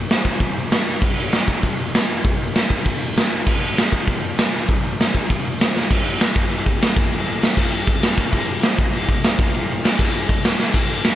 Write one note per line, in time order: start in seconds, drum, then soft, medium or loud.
0.10 snare loud
0.10 open hi-hat medium
0.25 kick medium
0.40 kick loud
0.40 open hi-hat medium
0.71 snare loud
0.71 open hi-hat medium
1.02 kick loud
1.02 crash medium
1.32 snare loud
1.32 open hi-hat medium
1.48 kick medium
1.63 kick medium
1.63 open hi-hat medium
1.94 snare loud
1.94 open hi-hat medium
2.25 kick loud
2.25 open hi-hat medium
2.55 snare loud
2.55 open hi-hat medium
2.70 kick loud
2.86 kick loud
2.86 open hi-hat medium
3.17 snare loud
3.17 open hi-hat medium
3.46 kick loud
3.46 crash medium
3.77 snare loud
3.77 open hi-hat medium
3.92 kick medium
4.07 kick loud
4.07 open hi-hat medium
4.38 snare loud
4.38 open hi-hat medium
4.69 kick loud
4.69 open hi-hat medium
5.00 snare loud
5.00 open hi-hat medium
5.15 kick medium
5.30 kick loud
5.30 open hi-hat medium
5.60 snare loud
5.60 open hi-hat medium
5.77 snare medium
5.91 kick loud
5.91 crash loud
5.91 crash medium
6.20 snare loud
6.20 crash medium
6.36 kick loud
6.51 crash medium
6.66 kick loud
6.82 snare loud
6.82 crash medium
6.97 kick loud
7.12 crash medium
7.42 snare loud
7.42 crash medium
7.57 kick loud
7.57 crash loud
7.73 crash medium
7.87 kick loud
8.02 snare loud
8.02 crash medium
8.18 kick loud
8.32 kick loud
8.32 crash medium
8.62 snare loud
8.62 crash medium
8.79 kick loud
8.94 crash medium
9.09 kick medium
9.23 snare loud
9.23 crash medium
9.39 kick loud
9.54 crash medium
9.84 snare loud
9.84 crash medium
9.99 kick loud
9.99 crash loud
10.14 crash medium
10.29 kick medium
10.44 snare loud
10.44 crash medium
10.60 snare medium
10.74 kick loud
10.74 crash loud
11.04 snare loud
11.04 crash medium